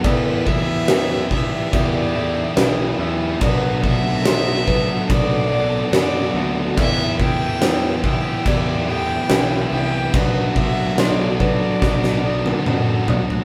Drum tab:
CC |x---x---x---x---|x---x---x---x---|x---x---x---x---|x---x-----------|
SD |----o-------o---|----o-------o---|----o-------o---|----o---oo------|
T1 |----------------|----------------|----------------|-----------o----|
T2 |----------------|----------------|----------------|------------o---|
FT |----------------|----------------|----------------|--------------oo|
BD |o-o---o-o-------|o-o---o-o-------|o-o---o-o-------|o-o---o-o-------|